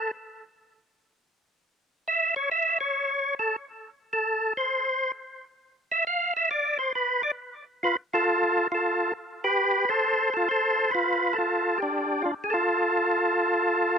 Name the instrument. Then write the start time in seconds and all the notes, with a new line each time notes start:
tonewheel organ
Already playing: A4
2.08 E5
2.36 C#5
2.51 E5
2.81 C#5
3.39 A4
4.13 A4
4.57 C5
5.92 E5
6.07 F5
6.37 E5
6.51 D5
6.79 C5
6.95 B4
7.23 D5
7.83 F4 B4
8.14 F4 A4
8.72 F4 A4
9.44 G4 B4
9.89 A4 C5
10.34 F4 A4
10.49 A4 C5
10.91 F4 B4
11.33 A4
11.38 F4
11.78 G4
11.82 D4
12.22 D4 F4
12.44 G#4
12.50 F4 A4